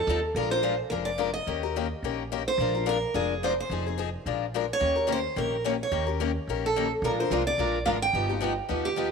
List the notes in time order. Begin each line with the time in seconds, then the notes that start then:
Already playing: A4
0.07 D#2 F3 C4 D#4 A4
0.35 A#1 F3 G#3 D4 F4 A#4
0.50 D4 F4 A#4 C5
0.63 F3 G#3 D4 F4 A#4
0.90 F1 F3 G#3 D4 F4 A#4
1.05 D5
1.18 F3 G#3 D4 F4 A#4
1.34 D#5
1.47 D#2 D#3 A#3 C#4 G4 A#4
1.63 C#4 G4 A#4
1.76 D#3 A#3 C#4 G4 A#4
2.03 A#1 D#3 A#3 C#4 G4 A#4
2.32 D#3 A#3 C#4 G4 A#4
2.48 C5
2.58 A#1 F3 G#3 D4 F4 A#4
2.75 D4 F4 A#4
2.86 F3 G#3 D4 F4 A#4
3.14 F1 F3 G#3 D4 F4 G#4 A#4
3.43 F3 G#3 D4 F4 A#4 C5
3.60 C5
3.70 F1 F3 C4 D#4 G#4
3.87 C4 D#4 G#4
3.98 F3 C4 D#4 G#4
4.26 A#1 F3 G#3 D4 F4 A#4
4.54 F3 G#3 D4 F4 A#4
4.73 C#5
4.80 D#2 D#3 A#3 C#4 G4 A#4
4.96 C#4 G4 A#4
5.07 D#3 A#3 C#4 G4 A#4
5.12 C5
5.36 A#1 D#3 A#3 C#4 G4 A#4
5.64 D#3 A#3 C#4 G4 A#4 C#5
5.83 C#5
5.92 D#2 D#3 A#3 C#4 G4 A#4
6.07 C#4 G4 A#4
6.20 D#3 A#3 C#4 G4 A#4
6.47 A#1 D#3 A#3 C#4 G4 A#4
6.66 A4
6.76 D#3 A#3 C#4 G4 A#4
7.02 A#1 F3 G#3 D4 F4 A#4
7.20 D4 F4 A#4 C5
7.30 C2 F3 G#3 D4 F4 A#4
7.47 D5
7.58 A#1 F3 G#3 D4 F4 A#4
7.85 G#1 F3 G#3 D4 F4 A#4 F5
8.02 G5
8.13 G1 F3 B3 D#4 G4
8.29 B3 D#4 G4
8.41 F3 B3 D#4 G4
8.69 D#2 F3 B3 D#4 G4
8.85 G4
8.96 F3 B3 D#4 G4